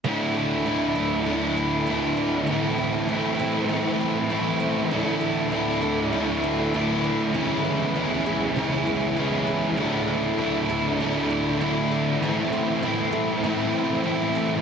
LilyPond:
<<
  \new Staff \with { instrumentName = "Overdriven electric guitar" } { \time 4/4 \key a \major \tempo 4 = 99 <d a d' e'>4 <d a d' e'>8 <a d' e'>8 <d a d' e'>4 <d a d' e'>4 | <a, e a c' e'>4 <e a c' e'>8 <a c' e'>8 <a, e a c' e'>4 <e a c' e'>4 | <d a d' e'>4 <d a d' e'>8 <a d' e'>8 <d a d' e'>4 <d a d' e'>4 | <cis e gis cis' e'>4 <e gis cis' e'>8 <gis cis' e'>8 <cis e gis cis' e'>4 <e gis cis' e'>4 |
<d a d' e'>4 <d a d' e'>8 <a d' e'>8 <d a d' e'>4 <d a d' e'>4 | <a, e a c' e'>4 <e a c' e'>8 <a c' e'>8 <a, e a c' e'>4 <e a c' e'>4 | }
  \new Staff \with { instrumentName = "Twelve-string acoustic guitar" } { \time 4/4 \key a \major e8 a8 e8 d'8 a8 e8 a8 d'8 | e8 a8 e8 c'8 a8 e8 a8 c'8 | e8 a8 e8 d'8 a8 e8 a8 d'8 | e8 b8 b8 gis'8 cis'8 b8 cis'8 gis'8 |
e8 a8 a8 a'8 d'8 a8 d'8 a'8 | e8 c'8 c'8 a'8 e'8 c'8 e'8 a'8 | }
  \new Staff \with { instrumentName = "Ambient pad" } { \time 4/4 \key a \major << { <d, d a a'>1 | <a, e c' e''>1 | <d, d a>1 | <cis, cis b gis'>1 |
<d, d a a'>1 | <a, c' e''>1 | } \\ { e'1 | r1 | e'1~ | e'1~ |
e'1~ | e'1 | } >> }
  \new Staff \with { instrumentName = "Overdriven electric guitar" } { \time 4/4 \key a \major <d a d' e'>4 <d a d' e'>4 <d a d' e'>4 <d a d' e'>4 | <a, e a c' e'>4 <e a c' e'>4 <a, e a c' e'>4 <e a c' e'>4 | <d a d' e'>4 <d a d' e'>4 <d a d' e'>4 <d a d' e'>4 | <cis e gis cis' e'>4 <e gis cis' e'>4 <cis e gis cis' e'>4 <e gis cis' e'>4 |
<d a d' e'>4 <d a d' e'>4 <d a d' e'>4 <d a d' e'>4 | <a, e a c' e'>4 <e a c' e'>4 <a, e a c' e'>4 <e a c' e'>4 | }
>>